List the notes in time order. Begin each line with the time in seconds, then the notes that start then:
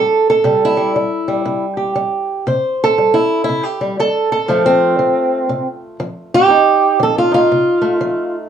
Already playing: G3 A4
0.30 A4
0.44 C3 G3
0.65 E4
0.77 G3
0.96 G3
1.28 G3
1.45 C3
1.77 G4
1.95 G3
2.47 C3 C5
2.84 A4
2.98 G3
3.14 E4
3.44 E4
3.49 C3
3.63 G4
3.81 G3
3.99 G3 A4
4.32 A4
4.48 F2 F3 A3 F4
4.66 C4
4.99 F3
5.49 C3
6.00 F3
6.34 G4
6.48 F2 D#4
7.00 F3 A4
7.18 F4
7.31 D#4 F4
7.52 C3
7.81 A3
8.01 F3